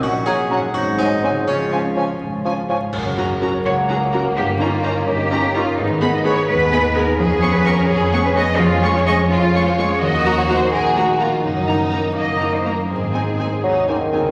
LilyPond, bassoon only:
\new Staff \with { instrumentName = "Bassoon" } { \clef bass \time 6/8 \key des \major \tempo 4. = 84 r8 ges8 ges8 r8 ges8 ges8 | r8 f8 f8 r8 f8 f8 | \key fis \major r2. | r2. |
r2. | r2. | \key ees \dorian r2. | r2. |
r2. | r4. ges8 ees4 | }